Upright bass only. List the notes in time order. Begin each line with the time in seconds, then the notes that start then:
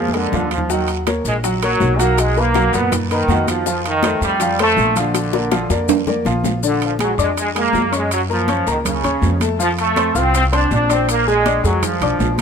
Already playing: F2
0.32 D#2
1.25 A#1
1.80 B1
2.73 F#2
3.28 F2
4.21 F2
4.77 A#1
5.70 F2
6.25 A#1
7.18 F2
7.73 F#2
8.67 C#2
9.03 D#2
9.22 F2
10.15 C2
10.71 A#1
11.64 F2
12.01 B1
12.19 A#1